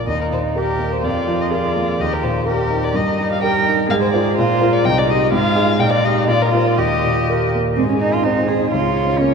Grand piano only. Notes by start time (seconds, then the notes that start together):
Already playing: A#1 A#3 F4 A#4
0.07 D#2
0.31 A#2
0.55 G4 A#4
0.79 A#3
1.03 F2
1.27 F3
1.51 G#4 A#4
1.76 A#3
1.99 D#2
2.23 A#2
2.46 G4 A#4
2.70 D#4
2.94 G2
3.19 G3
3.43 G4 A#4
3.66 D#4
3.89 G#2
4.14 F4 C5
4.38 A#2
4.61 F4 A#4
4.85 C2
5.08 D#4 G4
5.32 G#2
5.55 D#4 G#4
5.79 A#2
6.05 D#4 G4
6.28 A#2
6.52 F4 A#4
6.78 D#2
7.05 A#2
7.29 G4 A#4
7.55 A#3
7.78 G#2
7.94 G#4
8.10 D#4
8.26 C4
8.43 G#4
8.59 D#4
8.74 C#2
8.89 F4
9.07 C#4
9.21 A#3